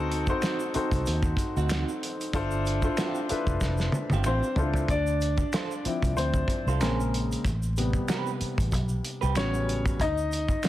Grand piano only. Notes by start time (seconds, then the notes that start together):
Already playing: C4 D#4 F#4 A4 C5
0.28 C4 D#4 F#4 A4 C5
0.74 C4 D#4 F#4 A4 C5
2.34 D4 E4 F4 A4 C5
2.82 D4 E4 F4 A4 C5
3.29 D4 E4 F4 A4 B4
4.26 C4 C5
4.57 D4 E4 F4 A4 C5
4.90 D4 D5
5.85 F3 C4 E4
6.17 C4 C5
6.81 C#3 G#3 A#3 C4 A#4
7.77 C3 G3 B3
9.37 C#3 F#3 G3 B3 C#4 C#5
10.01 D#4 D#5